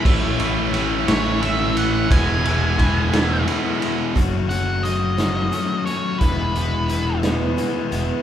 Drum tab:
CC |x-----|------|------|------|
RD |-xxxxx|xxxxxx|------|------|
HH |------|------|xxxxxx|xxxxxx|
SD |---o--|---o--|---o--|---o--|
BD |o-----|o-o---|o-----|o-----|